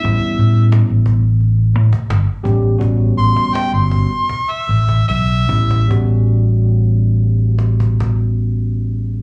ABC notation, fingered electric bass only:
X:1
M:4/4
L:1/16
Q:1/4=78
K:Amix
V:1 name="Fingered electric bass" clef=bass
A,,, z A,,3 A,,,4- A,,, A,, z G,,, z A,,,2 | A,,,2 A,,, z2 G,,,2 z3 A,,,2 B,,,2 A,,,2 | A,,,16 |]